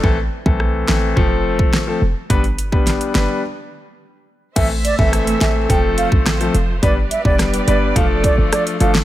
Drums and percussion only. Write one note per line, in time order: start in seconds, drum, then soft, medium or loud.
0.04 kick loud
0.46 kick medium
0.60 cross-stick medium
0.88 snare loud
1.17 kick loud
1.59 kick loud
1.73 cross-stick medium
1.73 snare loud
2.30 kick loud
2.30 closed hi-hat medium
2.44 closed hi-hat soft
2.59 closed hi-hat medium
2.72 kick loud
2.87 snare medium
2.87 closed hi-hat medium
3.01 closed hi-hat medium
3.15 snare loud
3.15 closed hi-hat medium
4.56 kick loud
4.56 closed hi-hat medium
4.56 crash medium
4.85 closed hi-hat medium
4.99 kick medium
5.13 cross-stick medium
5.13 closed hi-hat medium
5.27 closed hi-hat medium
5.41 snare loud
5.41 closed hi-hat medium
5.70 kick loud
5.70 closed hi-hat medium
5.98 closed hi-hat medium
6.12 kick loud
6.26 cross-stick medium
6.26 snare loud
6.26 closed hi-hat medium
6.41 closed hi-hat medium
6.55 closed hi-hat medium
6.83 kick loud
6.83 closed hi-hat medium
7.11 closed hi-hat medium
7.25 kick loud
7.39 cross-stick medium
7.39 snare medium
7.39 closed hi-hat medium
7.54 closed hi-hat medium
7.68 closed hi-hat medium
7.96 kick loud
7.96 closed hi-hat medium
8.24 kick medium
8.24 closed hi-hat medium
8.53 cross-stick loud
8.53 closed hi-hat medium
8.67 closed hi-hat medium
8.80 closed hi-hat medium
8.95 snare loud